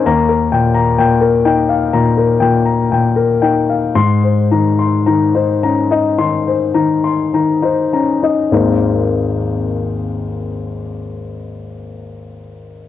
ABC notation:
X:1
M:4/4
L:1/16
Q:1/4=54
K:Ab
V:1 name="Grand piano"
z B g b g B g f b B g b g B g f | z c b c' b c b e c' c b c' b c b e | z16 |]
V:2 name="Grand piano" clef=bass
[E,,b]2 B,,2 B,,2 E z B,,2 B,,2 B,,2 E z | [A,,c']2 E,2 E, E D E E,2 E,2 E, E D E | [A,,,E,,A,B,CE]16 |]